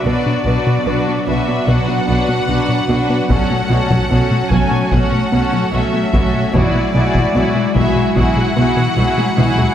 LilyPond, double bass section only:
\new Staff \with { instrumentName = "Double bass section" } { \clef bass \time 4/4 \key b \dorian \tempo 4 = 74 b,,8 b,,8 b,,8 b,,8 b,,8 b,,8 b,,8 b,,8 | b,,8 b,,8 b,,8 b,,8 b,,8 b,,8 b,,8 b,,8 | b,,8 b,,8 b,,8 b,,8 b,,8 b,,8 b,,8 b,,8 | }